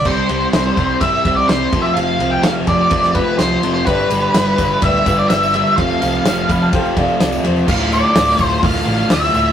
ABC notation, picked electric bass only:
X:1
M:4/4
L:1/8
Q:1/4=126
K:Ddor
V:1 name="Picked electric bass" clef=bass
C,, C,, C,, C,, G,,, C,, C,, F,,, | F,,, C,, F,,, F,,, F,,,2 C,, F,,, | G,,, G,,, G,,, G,,, D,,, G,,, G,,,2 | F,,, C,, F,,, F,,, F,,,2 C,, E,,, |
D,,,2 D,,, D,,, D,,, A,,, D,, D,,, |]